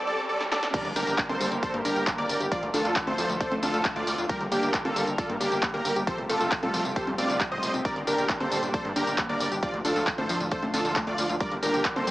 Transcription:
Already playing: riser, swell
0.07 A4 D5
0.29 A4 D5
0.41 snare
0.51 A4 D5, snare
0.63 snare
0.73 D3 G3 A#3 G4 A#4 D5, kick, closed hi-hat, crash, tambourine, impact
0.85 G1, closed hi-hat
0.96 G1 D4 G4 A#4, open hi-hat, tambourine
1.07 G1 D4, closed hi-hat, tambourine
1.18 kick, clap, closed hi-hat, tambourine
1.29 G1 A#3 A4 C5, closed hi-hat, high conga
1.40 G1 G3, open hi-hat, tambourine
1.51 G1, closed hi-hat, tambourine
1.63 A4 C5 D5, kick, closed hi-hat, tambourine
1.74 G2 A#3, closed hi-hat
1.85 G1 D4 G4 A#4, open hi-hat, tambourine
1.96 G1, closed hi-hat, tambourine
2.07 A#3, kick, clap, closed hi-hat, tambourine
2.18 G1 A#3 A#4 D5, closed hi-hat
2.29 G1, open hi-hat, tambourine
2.40 G1 G4, closed hi-hat, tambourine
2.51 F3 A3 F4 A4 D5, kick, closed hi-hat, tambourine
2.63 D2, closed hi-hat
2.74 D2 D4 F4 A4, open hi-hat, tambourine
2.85 D2 D4, closed hi-hat, tambourine
2.96 kick, clap, closed hi-hat, tambourine
3.07 D2 A3 A4 C5, closed hi-hat, high conga
3.18 D2 F3, open hi-hat, tambourine
3.29 D2, closed hi-hat, tambourine
3.40 A4 C5 D5, kick, closed hi-hat, tambourine
3.52 D1 A3, closed hi-hat, high conga
3.63 D2 D4 F4 A4, open hi-hat, tambourine, high conga
3.74 D2, closed hi-hat, tambourine
3.85 A3, kick, clap, closed hi-hat, tambourine
3.96 D2 A3 F4 D5, closed hi-hat
4.07 D2, open hi-hat, tambourine
4.18 D2 F4, tambourine
4.29 G3 A#3 G4 A#4, kick, closed hi-hat, tambourine
4.41 G1, closed hi-hat
4.52 G1 A#3 D4 G4, open hi-hat, tambourine
4.63 G1 D4, closed hi-hat, tambourine
4.74 kick, clap, closed hi-hat, tambourine
4.85 G1 A#3 F4 A4, closed hi-hat, high conga
4.96 G1 G3, open hi-hat, tambourine
5.07 G1, closed hi-hat, tambourine
5.18 F4 A4 D5, kick, closed hi-hat, tambourine
5.29 G2 A#3, closed hi-hat
5.40 G1 A#3 D4 G4, open hi-hat, tambourine
5.52 G1, closed hi-hat, tambourine
5.63 A#3, kick, clap, closed hi-hat, tambourine
5.74 G1 A#3 G4 A#4, closed hi-hat
5.85 G1, open hi-hat, tambourine
5.96 G1 G4, closed hi-hat, tambourine
6.07 C3 F3 A3 F4 A4 C5, kick, closed hi-hat, tambourine
6.18 F1, closed hi-hat
6.29 F1 A3 F4 A4, open hi-hat, tambourine
6.40 F1 A3, closed hi-hat, tambourine
6.52 kick, clap, closed hi-hat, tambourine
6.63 F1 G3 F4 A4, closed hi-hat, high conga
6.74 F1 F3, open hi-hat, tambourine
6.85 F1, tambourine
6.96 G4 A4 C5, kick, closed hi-hat, tambourine
7.07 F2 G3, closed hi-hat, high conga
7.18 F1 C4 F4 D5, open hi-hat, tambourine, high conga
7.29 G1, clap, closed hi-hat, tambourine
7.40 G3, kick, clap, closed hi-hat, tambourine
7.52 F1 C4 C5 D#5, closed hi-hat
7.63 F1, open hi-hat, tambourine
7.74 F1 C4, closed hi-hat, tambourine
7.85 A#2 D3 G3 D4 A#4 D5, kick, closed hi-hat, tambourine
7.96 G1, closed hi-hat
8.07 G1 D4 G4 A#4, open hi-hat, tambourine
8.18 G1 D4, closed hi-hat, tambourine
8.29 kick, clap, closed hi-hat, tambourine
8.40 G1 A#3 A4 C5, closed hi-hat, high conga
8.51 G1 G3, open hi-hat, tambourine
8.63 G1, closed hi-hat, tambourine
8.74 A4 C5 D5, kick, closed hi-hat, tambourine
8.85 G2 A#3, closed hi-hat
8.96 G1 D4 G4 A#4, open hi-hat, tambourine
9.07 G1, closed hi-hat, tambourine
9.18 A#3, kick, clap, closed hi-hat, tambourine
9.29 G1 A#3 A#4 D5, closed hi-hat
9.40 G1, open hi-hat, tambourine
9.52 G1 G4, closed hi-hat, tambourine
9.62 A2 F3 D4 F4 D5, kick, closed hi-hat, tambourine
9.74 D2, closed hi-hat
9.85 D2 D4 F4 A4, open hi-hat, tambourine
9.96 D2 D4, closed hi-hat, tambourine
10.07 kick, clap, closed hi-hat
10.18 D2 A3 A4 C5, closed hi-hat, high conga
10.29 D2 F3, open hi-hat, tambourine
10.40 D2, closed hi-hat, tambourine
10.51 A4 C5 D5, kick, closed hi-hat, tambourine
10.63 D1 A3, closed hi-hat, high conga
10.74 D2 D4 F4 A4, open hi-hat, tambourine, high conga
10.85 D2, closed hi-hat, tambourine
10.96 A3, kick, clap, closed hi-hat, tambourine
11.07 D2 A3 F4 D5, closed hi-hat
11.18 D2, open hi-hat, tambourine
11.29 D2 F4, closed hi-hat, tambourine
11.40 A#2 G3 G4 A#4 D5, kick, closed hi-hat, tambourine
11.52 G1, closed hi-hat
11.62 G1 D4 G4 A#4, open hi-hat, tambourine
11.74 G1 D4, closed hi-hat, tambourine
11.85 kick, clap, closed hi-hat, tambourine
11.96 G1 A#3 A4 C5, closed hi-hat, high conga
12.07 G1 G3, open hi-hat, tambourine

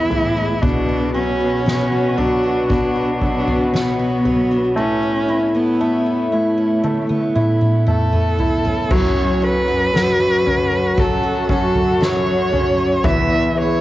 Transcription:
Already playing: E2 E3 G#3 B3 E4 G#4 B4 E5 B5
0.10 A2 E3 E4, floor tom
0.37 G#3
0.62 B2 D4 F#4 B4 C#5, kick, floor tom
0.89 F#4
1.14 F#3 C#4 C#5
1.40 B2 F#4
1.66 B2 C#5, snare
1.92 F#4
2.18 F#3 D4 C#5, floor tom
2.43 D4
2.69 B2 D4, kick, floor tom
2.95 F#4
3.21 F#3 C#5, kick
3.47 F#4, floor tom
3.73 B2 B3 C#5, snare
3.99 F#4
4.25 F#3 C#5, floor tom
4.51 D4
4.76 A2 A3 C#4 E4 A4 E5
5.03 B3
5.28 E4
5.54 B3
5.80 A3 E4
6.06 B3
6.32 A3 E4
6.58 C#4
6.84 A2 A3, high tom
7.09 B3, high tom
7.35 E4, mid tom
7.61 B3, mid tom
7.87 A3 E4 A4, mid tom
8.13 B3, mid tom
8.39 E4, floor tom
8.65 C#4, floor tom
8.91 F#2 F#3 C#4 C#5, kick, floor tom, crash
9.16 F#4
9.42 C#4 A4 B4
9.68 F#2 F#4
9.94 F#2 F#3 F#4 A4, snare
10.20 F#4
10.46 C#4 A4, floor tom
10.72 C#4
10.97 F#2 F#3 A4, kick, floor tom
11.23 F#4
11.49 C#4 A4, kick
11.75 F#4, floor tom
12.01 F#3 A4 C#5, snare
12.26 F#4
12.52 C#4 A4, floor tom
12.78 C#4
13.04 E2 E3 E4 E5, kick, floor tom
13.30 E4
13.55 B3 G#4 C#5

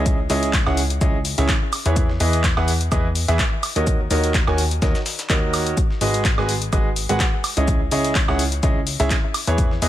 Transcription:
Already playing: C#2 C#3 E4 G#4 C#5 D#5
0.06 kick, closed hi-hat, shaker
0.30 C#2 C#3 E4 G#4 C#5 D#5, open hi-hat, shaker
0.43 closed hi-hat
0.53 kick, snare, clap, closed hi-hat, shaker
0.67 C#2 C#3 E4 G#4 C#5 F#5, snare, high woodblock
0.77 open hi-hat, shaker
0.90 closed hi-hat
1.01 C#2 C#3 E4 G#4 C#5 D#5, kick, closed hi-hat, shaker
1.25 open hi-hat, shaker
1.38 C#2 C#3 E4 G#4 C#5 E5, closed hi-hat
1.49 kick, snare, clap, closed hi-hat, shaker
1.73 open hi-hat, high woodblock, shaker
1.86 E2 E3 E4 G#4 B4 C#5, closed hi-hat
1.96 kick, closed hi-hat, shaker
2.09 snare
2.20 E2 E3 E4 G#4 B4 D#5, open hi-hat, shaker
2.33 closed hi-hat
2.44 kick, snare, clap, closed hi-hat, shaker
2.57 E2 E3 E4 G#4 B4 F#5, snare, high woodblock
2.68 open hi-hat, shaker
2.81 closed hi-hat
2.92 E2 E3 E4 G#4 B4 D#5, kick, closed hi-hat, high woodblock, shaker
3.15 open hi-hat, shaker
3.28 E2 E3 E4 G#4 B4 E5, snare, closed hi-hat
3.39 kick, snare, clap, closed hi-hat, shaker
3.63 open hi-hat, high woodblock, shaker
3.76 D#2 D#3 F#4 A#4 C#5 D#5, closed hi-hat
3.87 kick, closed hi-hat, shaker
4.11 D#2 D#3 F#4 A#4 C#5 D#5, open hi-hat, shaker
4.24 closed hi-hat
4.34 kick, snare, clap, closed hi-hat, shaker
4.47 D#2 D#3 F#4 A#4 C#5 G#5, snare, high woodblock
4.58 open hi-hat, shaker
4.71 closed hi-hat
4.82 D#2 D#3 F#4 A#4 C#5 D#5, kick, snare, closed hi-hat, shaker
4.95 snare, shaker
5.06 snare, open hi-hat, shaker
5.19 snare, closed hi-hat, shaker
5.30 D#2 D#3 F#4 A#4 C#5 D#5, kick, snare, clap, closed hi-hat, shaker
5.54 snare, open hi-hat, high woodblock, shaker
5.67 closed hi-hat
5.77 kick, closed hi-hat, shaker
5.90 snare
6.01 G#1 G#3 F#4 G#4 B4 D#5, open hi-hat, shaker
6.14 closed hi-hat
6.25 kick, snare, clap, closed hi-hat, shaker
6.38 G#1 G#3 F#4 G#4 B4 G#5, snare, high woodblock
6.49 open hi-hat, shaker
6.62 closed hi-hat
6.73 G#1 G#3 F#4 G#4 B4 D#5, kick, closed hi-hat, high woodblock, shaker
6.96 open hi-hat, shaker
7.09 G#1 G#3 F#4 G#4 B4 F#5, snare, closed hi-hat
7.20 kick, snare, clap, closed hi-hat, shaker
7.44 open hi-hat, high woodblock, shaker
7.57 C#2 C#3 E4 G#4 C#5 D#5, closed hi-hat
7.68 kick, closed hi-hat, shaker
7.91 C#2 C#3 E4 G#4 C#5 D#5, open hi-hat, shaker
8.04 closed hi-hat
8.15 kick, snare, clap, closed hi-hat, shaker
8.28 C#2 C#3 E4 G#4 C#5 F#5, snare, high woodblock
8.39 open hi-hat, shaker
8.52 closed hi-hat
8.63 C#2 C#3 E4 G#4 C#5 D#5, kick, closed hi-hat, shaker
8.87 open hi-hat, shaker
9.00 C#2 C#3 E4 G#4 C#5 E5, closed hi-hat
9.10 kick, snare, clap, closed hi-hat, shaker
9.34 open hi-hat, high woodblock, shaker
9.47 E2 E3 E4 G#4 B4 C#5, closed hi-hat
9.58 kick, closed hi-hat, shaker
9.71 snare
9.82 E2 E3 E4 G#4 B4 D#5, open hi-hat, shaker

